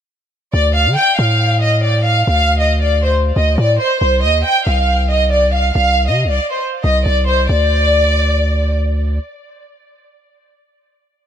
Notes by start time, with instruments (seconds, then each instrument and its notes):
0.54 808-style bass D2, violin section D5
0.76 violin section F5
0.86 808-style bass D3
0.97 violin section G5
1.19 808-style bass A2, violin section F5
1.62 violin section D#5
1.84 violin section D5
2.06 violin section F5
2.27 808-style bass D2, violin section F5
2.60 violin section D#5
2.82 violin section D5
3.04 violin section C5
3.36 808-style bass D2, violin section D#5
3.58 808-style bass A2, violin section D5
3.79 violin section C5
4.01 808-style bass C2, violin section C5
4.23 808-style bass D#2, violin section D#5
4.45 violin section G5
4.67 808-style bass C2, violin section F5
5.10 violin section D#5
5.32 violin section D5
5.54 violin section F5
5.75 808-style bass C2, violin section F5
6.08 808-style bass C3, violin section D#5
6.24 808-style bass C2
6.30 violin section D5
6.51 violin section C5
6.84 808-style bass C2, violin section D#5
7.06 808-style bass C2, violin section D5
7.28 violin section C5
7.49 808-style bass D2, violin section D5